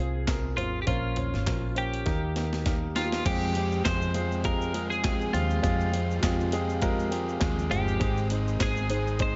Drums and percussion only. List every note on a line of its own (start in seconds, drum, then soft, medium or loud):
0.28 kick loud
0.28 snare loud
0.28 clap medium
0.28 closed hi-hat medium
0.58 closed hi-hat medium
0.58 floor tom soft
0.87 kick loud
0.87 closed hi-hat medium
1.16 closed hi-hat medium
1.16 floor tom medium
1.34 snare soft
1.47 kick medium
1.47 snare medium
1.47 clap medium
1.47 closed hi-hat medium
1.76 closed hi-hat medium
1.94 closed hi-hat soft
2.06 kick medium
2.06 snare soft
2.06 closed hi-hat medium
2.36 snare medium
2.36 closed hi-hat medium
2.53 snare medium
2.66 kick loud
2.66 snare medium
2.66 closed hi-hat medium
2.96 snare medium
2.96 closed hi-hat medium
3.12 snare medium
3.25 kick loud
3.25 closed hi-hat medium
3.25 crash loud
3.25 shaker medium
3.42 shaker medium
3.55 closed hi-hat medium
3.55 shaker soft
3.72 shaker soft
3.85 kick loud
3.85 snare loud
3.85 clap loud
3.85 closed hi-hat medium
3.85 shaker medium
4.02 shaker soft
4.14 closed hi-hat medium
4.14 shaker medium
4.32 shaker soft
4.44 kick loud
4.44 closed hi-hat medium
4.44 shaker medium
4.62 shaker medium
4.74 closed hi-hat medium
4.74 shaker soft
4.92 shaker medium
5.04 kick loud
5.04 snare loud
5.04 clap medium
5.04 closed hi-hat medium
5.04 shaker medium
5.21 shaker soft
5.34 closed hi-hat medium
5.34 floor tom medium
5.34 shaker medium
5.50 shaker soft
5.64 kick loud
5.64 closed hi-hat medium
5.64 shaker medium
5.80 shaker medium
5.93 closed hi-hat medium
5.93 shaker soft
6.11 shaker medium
6.23 kick loud
6.23 snare loud
6.23 clap loud
6.23 closed hi-hat medium
6.23 shaker medium
6.40 shaker medium
6.52 closed hi-hat medium
6.52 shaker medium
6.69 shaker soft
6.82 kick loud
6.82 closed hi-hat medium
6.82 shaker medium
7.00 shaker medium
7.12 closed hi-hat medium
7.12 shaker soft
7.29 shaker soft
7.41 kick loud
7.41 snare loud
7.41 clap loud
7.41 closed hi-hat loud
7.41 shaker medium
7.59 shaker medium
7.71 closed hi-hat medium
7.71 floor tom medium
7.71 shaker medium
7.88 shaker soft
8.01 kick loud
8.01 closed hi-hat medium
8.01 shaker medium
8.17 shaker medium
8.30 closed hi-hat medium
8.30 shaker medium
8.48 shaker medium
8.60 kick loud
8.60 snare loud
8.60 clap loud
8.60 closed hi-hat medium
8.60 shaker medium
8.77 shaker soft
8.90 closed hi-hat medium
8.90 shaker medium
9.07 shaker medium
9.19 kick loud
9.19 closed hi-hat medium
9.19 shaker medium